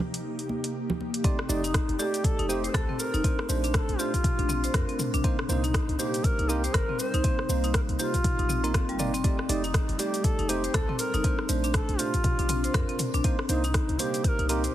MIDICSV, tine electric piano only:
0, 0, Header, 1, 2, 480
1, 0, Start_track
1, 0, Tempo, 500000
1, 1193, Time_signature, 4, 2, 24, 8
1, 14156, End_track
2, 0, Start_track
2, 0, Title_t, "Tine electric piano"
2, 0, Program_c, 0, 4
2, 0, Note_on_c, 0, 58, 74
2, 0, Note_on_c, 0, 63, 69
2, 0, Note_on_c, 0, 72, 78
2, 1169, Note_off_c, 0, 63, 0
2, 1169, Note_off_c, 0, 72, 0
2, 1170, Note_off_c, 0, 58, 0
2, 1194, Note_on_c, 0, 57, 87
2, 1194, Note_on_c, 0, 63, 80
2, 1194, Note_on_c, 0, 74, 93
2, 1195, Note_on_c, 0, 67, 77
2, 1313, Note_off_c, 0, 57, 0
2, 1313, Note_off_c, 0, 63, 0
2, 1313, Note_off_c, 0, 67, 0
2, 1313, Note_off_c, 0, 74, 0
2, 1433, Note_on_c, 0, 57, 87
2, 1433, Note_on_c, 0, 63, 78
2, 1433, Note_on_c, 0, 67, 79
2, 1433, Note_on_c, 0, 74, 95
2, 1552, Note_off_c, 0, 57, 0
2, 1552, Note_off_c, 0, 63, 0
2, 1553, Note_off_c, 0, 67, 0
2, 1553, Note_off_c, 0, 74, 0
2, 1911, Note_on_c, 0, 74, 83
2, 1912, Note_on_c, 0, 63, 72
2, 1913, Note_on_c, 0, 57, 75
2, 1913, Note_on_c, 0, 67, 68
2, 2369, Note_off_c, 0, 57, 0
2, 2369, Note_off_c, 0, 63, 0
2, 2369, Note_off_c, 0, 67, 0
2, 2369, Note_off_c, 0, 74, 0
2, 2391, Note_on_c, 0, 57, 93
2, 2392, Note_on_c, 0, 63, 81
2, 2392, Note_on_c, 0, 67, 83
2, 2392, Note_on_c, 0, 72, 105
2, 2512, Note_off_c, 0, 57, 0
2, 2512, Note_off_c, 0, 63, 0
2, 2512, Note_off_c, 0, 67, 0
2, 2512, Note_off_c, 0, 72, 0
2, 3110, Note_on_c, 0, 57, 76
2, 3110, Note_on_c, 0, 62, 69
2, 3111, Note_on_c, 0, 72, 83
2, 3231, Note_off_c, 0, 57, 0
2, 3231, Note_off_c, 0, 62, 0
2, 3232, Note_off_c, 0, 72, 0
2, 3352, Note_on_c, 0, 62, 72
2, 3352, Note_on_c, 0, 72, 92
2, 3353, Note_on_c, 0, 57, 82
2, 3809, Note_off_c, 0, 57, 0
2, 3809, Note_off_c, 0, 62, 0
2, 3809, Note_off_c, 0, 72, 0
2, 3831, Note_on_c, 0, 57, 72
2, 3832, Note_on_c, 0, 62, 68
2, 3832, Note_on_c, 0, 72, 83
2, 3952, Note_off_c, 0, 57, 0
2, 3952, Note_off_c, 0, 62, 0
2, 3952, Note_off_c, 0, 72, 0
2, 5030, Note_on_c, 0, 58, 88
2, 5030, Note_on_c, 0, 63, 83
2, 5030, Note_on_c, 0, 72, 94
2, 5151, Note_off_c, 0, 58, 0
2, 5151, Note_off_c, 0, 63, 0
2, 5151, Note_off_c, 0, 72, 0
2, 5272, Note_on_c, 0, 58, 89
2, 5272, Note_on_c, 0, 63, 80
2, 5272, Note_on_c, 0, 72, 98
2, 5392, Note_off_c, 0, 58, 0
2, 5392, Note_off_c, 0, 63, 0
2, 5392, Note_off_c, 0, 72, 0
2, 5752, Note_on_c, 0, 58, 78
2, 5752, Note_on_c, 0, 63, 72
2, 5752, Note_on_c, 0, 72, 84
2, 6209, Note_off_c, 0, 58, 0
2, 6209, Note_off_c, 0, 63, 0
2, 6209, Note_off_c, 0, 72, 0
2, 6232, Note_on_c, 0, 58, 92
2, 6233, Note_on_c, 0, 63, 85
2, 6233, Note_on_c, 0, 70, 104
2, 6352, Note_off_c, 0, 58, 0
2, 6352, Note_off_c, 0, 63, 0
2, 6352, Note_off_c, 0, 70, 0
2, 6953, Note_on_c, 0, 58, 75
2, 6953, Note_on_c, 0, 63, 68
2, 6953, Note_on_c, 0, 72, 82
2, 7072, Note_off_c, 0, 63, 0
2, 7073, Note_off_c, 0, 58, 0
2, 7073, Note_off_c, 0, 72, 0
2, 7193, Note_on_c, 0, 72, 93
2, 7194, Note_on_c, 0, 58, 82
2, 7194, Note_on_c, 0, 63, 71
2, 7650, Note_off_c, 0, 58, 0
2, 7650, Note_off_c, 0, 63, 0
2, 7650, Note_off_c, 0, 72, 0
2, 7674, Note_on_c, 0, 58, 76
2, 7674, Note_on_c, 0, 63, 66
2, 7674, Note_on_c, 0, 72, 81
2, 7793, Note_off_c, 0, 58, 0
2, 7793, Note_off_c, 0, 63, 0
2, 7793, Note_off_c, 0, 72, 0
2, 8295, Note_on_c, 0, 58, 80
2, 8295, Note_on_c, 0, 63, 71
2, 8295, Note_on_c, 0, 70, 86
2, 8609, Note_off_c, 0, 63, 0
2, 8610, Note_off_c, 0, 58, 0
2, 8610, Note_off_c, 0, 70, 0
2, 8633, Note_on_c, 0, 58, 85
2, 8633, Note_on_c, 0, 63, 77
2, 8633, Note_on_c, 0, 74, 95
2, 8753, Note_off_c, 0, 58, 0
2, 8753, Note_off_c, 0, 63, 0
2, 8753, Note_off_c, 0, 74, 0
2, 8873, Note_on_c, 0, 63, 81
2, 8873, Note_on_c, 0, 67, 82
2, 8873, Note_on_c, 0, 74, 94
2, 8874, Note_on_c, 0, 57, 87
2, 8993, Note_off_c, 0, 57, 0
2, 8993, Note_off_c, 0, 63, 0
2, 8993, Note_off_c, 0, 67, 0
2, 8993, Note_off_c, 0, 74, 0
2, 9114, Note_on_c, 0, 63, 84
2, 9115, Note_on_c, 0, 57, 89
2, 9115, Note_on_c, 0, 67, 79
2, 9115, Note_on_c, 0, 74, 98
2, 9233, Note_off_c, 0, 63, 0
2, 9234, Note_off_c, 0, 57, 0
2, 9234, Note_off_c, 0, 67, 0
2, 9234, Note_off_c, 0, 74, 0
2, 9592, Note_on_c, 0, 63, 68
2, 9593, Note_on_c, 0, 57, 73
2, 9593, Note_on_c, 0, 67, 69
2, 9593, Note_on_c, 0, 74, 81
2, 10049, Note_off_c, 0, 57, 0
2, 10049, Note_off_c, 0, 63, 0
2, 10049, Note_off_c, 0, 74, 0
2, 10050, Note_off_c, 0, 67, 0
2, 10071, Note_on_c, 0, 57, 93
2, 10071, Note_on_c, 0, 63, 88
2, 10071, Note_on_c, 0, 72, 102
2, 10072, Note_on_c, 0, 67, 87
2, 10191, Note_off_c, 0, 57, 0
2, 10191, Note_off_c, 0, 63, 0
2, 10192, Note_off_c, 0, 67, 0
2, 10192, Note_off_c, 0, 72, 0
2, 10791, Note_on_c, 0, 62, 69
2, 10792, Note_on_c, 0, 57, 75
2, 10792, Note_on_c, 0, 72, 85
2, 10912, Note_off_c, 0, 57, 0
2, 10912, Note_off_c, 0, 62, 0
2, 10912, Note_off_c, 0, 72, 0
2, 11029, Note_on_c, 0, 57, 81
2, 11030, Note_on_c, 0, 62, 73
2, 11030, Note_on_c, 0, 72, 88
2, 11487, Note_off_c, 0, 57, 0
2, 11488, Note_off_c, 0, 62, 0
2, 11488, Note_off_c, 0, 72, 0
2, 11510, Note_on_c, 0, 57, 74
2, 11510, Note_on_c, 0, 72, 78
2, 11511, Note_on_c, 0, 62, 68
2, 11631, Note_off_c, 0, 57, 0
2, 11631, Note_off_c, 0, 62, 0
2, 11631, Note_off_c, 0, 72, 0
2, 12713, Note_on_c, 0, 58, 87
2, 12713, Note_on_c, 0, 63, 84
2, 12713, Note_on_c, 0, 72, 96
2, 12833, Note_off_c, 0, 58, 0
2, 12833, Note_off_c, 0, 63, 0
2, 12833, Note_off_c, 0, 72, 0
2, 12953, Note_on_c, 0, 58, 86
2, 12954, Note_on_c, 0, 63, 79
2, 12954, Note_on_c, 0, 72, 100
2, 13073, Note_off_c, 0, 58, 0
2, 13073, Note_off_c, 0, 63, 0
2, 13073, Note_off_c, 0, 72, 0
2, 13433, Note_on_c, 0, 72, 87
2, 13434, Note_on_c, 0, 58, 77
2, 13434, Note_on_c, 0, 63, 71
2, 13890, Note_off_c, 0, 58, 0
2, 13890, Note_off_c, 0, 63, 0
2, 13890, Note_off_c, 0, 72, 0
2, 13915, Note_on_c, 0, 58, 89
2, 13915, Note_on_c, 0, 63, 85
2, 13915, Note_on_c, 0, 70, 103
2, 14034, Note_off_c, 0, 58, 0
2, 14034, Note_off_c, 0, 63, 0
2, 14034, Note_off_c, 0, 70, 0
2, 14156, End_track
0, 0, End_of_file